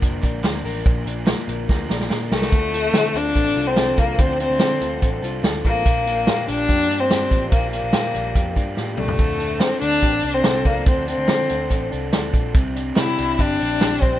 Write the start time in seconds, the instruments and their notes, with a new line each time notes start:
Already playing: clean electric guitar A#2 A#3 D4 A#4, overdriven electric guitar D3
0.01 picked electric bass F1, overdriven electric guitar F3 A#3 D4 A#4, kick, closed hi-hat
0.22 picked electric bass A#1, overdriven electric guitar F3 A#3 D4 A#4, kick, clap, closed hi-hat
0.43 picked electric bass D2, overdriven electric guitar A#2 D3 F3 A#3 D4 A#4, snare, clap, closed hi-hat
0.64 picked electric bass A1, overdriven electric guitar F3 A#3 D4 A#4, open hi-hat
0.85 picked electric bass A#1, overdriven electric guitar A#2 D3 F3 A#3 D4 A#4, kick, closed hi-hat
1.05 picked electric bass A#1, overdriven electric guitar F3 A#3 D4 A#4, closed hi-hat
1.25 overdriven electric guitar A#2 D3 F3 A#3 D4 A#4, snare, clap, closed hi-hat
1.48 picked electric bass A#1, clean electric guitar A#4, closed hi-hat
1.67 picked electric bass D2, overdriven electric guitar F3 A#3 D4 A#4, kick, snare
1.89 picked electric bass A#1, overdriven electric guitar F3 A#3 D4 A#4, snare, clap
2.00 snare
2.09 overdriven electric guitar A#2 D3 F3 A#3 D4 A#4, picked electric bass A#2, snare, clap
2.31 picked electric bass C2, overdriven electric guitar F3 A#3 D4 A#4, violin A3, snare
2.42 snare
2.52 picked electric bass D2, overdriven electric guitar D3 F3 C4 D4 A4, kick, closed hi-hat
2.72 overdriven electric guitar C4 D4 A4, clean electric guitar F4, closed hi-hat
2.93 picked electric bass D3, overdriven electric guitar F3 C4 D4 A4, snare, closed hi-hat
3.14 picked electric bass D2, overdriven electric guitar C4 D4 A4, violin D4, clean electric guitar F4, closed hi-hat
3.35 picked electric bass A1, clean electric guitar A4, kick, closed hi-hat
3.56 picked electric bass C2, overdriven electric guitar C4 D4 A4, clean electric guitar F4, closed hi-hat
3.67 violin C4
3.76 picked electric bass C2, overdriven electric guitar F3 C4 D4 A4, snare, closed hi-hat
3.98 picked electric bass C2, violin A#3, clean electric guitar F4, kick, closed hi-hat
4.18 picked electric bass D2, overdriven electric guitar D3 F3 C4 D4 A4, violin C4, kick, closed hi-hat
4.40 violin C4, overdriven electric guitar C4 D4 A4, clean electric guitar F4, closed hi-hat
4.50 picked electric bass D2
4.59 picked electric bass D3, overdriven electric guitar F3 C4 D4 A4, snare, closed hi-hat
4.81 picked electric bass D2, overdriven electric guitar C4 D4 A4, clean electric guitar F4, closed hi-hat
5.02 picked electric bass A1, clean electric guitar A4, kick, closed hi-hat
5.22 picked electric bass C2, overdriven electric guitar C4 D4 A4, clean electric guitar F4, closed hi-hat
5.43 picked electric bass D2, overdriven electric guitar F3 C4 D4 A4, snare, closed hi-hat
5.64 picked electric bass A1, violin A#3, clean electric guitar F4, kick, closed hi-hat
5.85 picked electric bass A#1, overdriven electric guitar A#2 D3 F3 A#3 D4 G4, kick, closed hi-hat
6.06 overdriven electric guitar F3 A#3 D4 G4, closed hi-hat
6.26 picked electric bass A#2, overdriven electric guitar F3 A#3 D4 G4, snare, closed hi-hat
6.47 picked electric bass A#1, overdriven electric guitar F3 A#3 D4 G4, violin D4, closed hi-hat
6.69 picked electric bass F2, clean electric guitar G4, kick, closed hi-hat
6.88 picked electric bass G2, overdriven electric guitar F3 A#3 D4 G4, closed hi-hat
7.00 violin C4
7.10 picked electric bass G2, overdriven electric guitar F3 A#3 D4 G4, snare, closed hi-hat
7.31 picked electric bass A1, clean electric guitar D4, kick, closed hi-hat
7.51 picked electric bass A#1, overdriven electric guitar A#2 D3 F3 A#3 D4 G4, violin A#3, kick, closed hi-hat
7.71 overdriven electric guitar F3 A#3 D4 G4, violin A#3, closed hi-hat
7.83 picked electric bass A#1
7.92 picked electric bass A#2, overdriven electric guitar F3 A#3 D4 G4, snare, closed hi-hat
8.14 picked electric bass A#1, overdriven electric guitar F3 A#3 D4 G4, closed hi-hat
8.35 picked electric bass F2, clean electric guitar G4, kick, closed hi-hat
8.56 picked electric bass G2, overdriven electric guitar F3 A#3 D4 G4, kick, closed hi-hat
8.76 picked electric bass A2, overdriven electric guitar F3 A#3 D4 G4, snare
8.97 picked electric bass C2, violin A3, clean electric guitar D4, mid tom
9.08 floor tom
9.19 picked electric bass D2, overdriven electric guitar D3 F3 C4 D4 A4, kick, closed hi-hat
9.39 overdriven electric guitar C4 D4 A4, closed hi-hat
9.60 picked electric bass D3, overdriven electric guitar F3 C4 D4 A4, violin C4, snare, clap, closed hi-hat
9.80 picked electric bass D2, overdriven electric guitar C4 D4 A4, violin D4, closed hi-hat
10.02 picked electric bass A1, clean electric guitar G4, kick, closed hi-hat
10.13 clean electric guitar A4
10.23 picked electric bass C2, overdriven electric guitar C4 D4 A4, closed hi-hat
10.34 violin C4
10.44 picked electric bass C2, overdriven electric guitar F3 C4 D4 A4, snare, clap, closed hi-hat
10.65 picked electric bass C2, violin A#3, clean electric guitar D4, kick, closed hi-hat
10.86 picked electric bass D2, overdriven electric guitar D3 F3 C4 D4 A4, violin C4, kick, closed hi-hat
11.07 violin C4, overdriven electric guitar C4 D4 A4, closed hi-hat
11.18 picked electric bass D2
11.28 picked electric bass D3, overdriven electric guitar F3 C4 D4 A4, snare, clap, closed hi-hat
11.49 picked electric bass D2, overdriven electric guitar C4 D4 A4, closed hi-hat
11.70 picked electric bass A1, clean electric guitar A4, kick, closed hi-hat
11.92 picked electric bass C2, overdriven electric guitar C4 D4 A4, closed hi-hat
12.12 picked electric bass D2, overdriven electric guitar F3 C4 D4 A4, snare, clap, closed hi-hat
12.33 picked electric bass A#1, clean electric guitar D4, kick, closed hi-hat
12.55 picked electric bass C2, overdriven electric guitar C3 G3 C4 D4 G4, kick, closed hi-hat
12.76 overdriven electric guitar C4 D4 G4, closed hi-hat
12.96 picked electric bass C3, overdriven electric guitar G3 C4 D4, violin E4, snare, clap, closed hi-hat
13.00 overdriven electric guitar G4
13.18 picked electric bass C2, overdriven electric guitar C4 D4 G4, closed hi-hat
13.39 picked electric bass G1, violin D4, clean electric guitar G4, kick, closed hi-hat
13.60 picked electric bass A#1, overdriven electric guitar C4 D4 G4, closed hi-hat
13.81 picked electric bass A#1, overdriven electric guitar G3 C4 D4 G4, snare, clap, closed hi-hat
14.02 picked electric bass A#1, violin C4, clean electric guitar D4, kick, closed hi-hat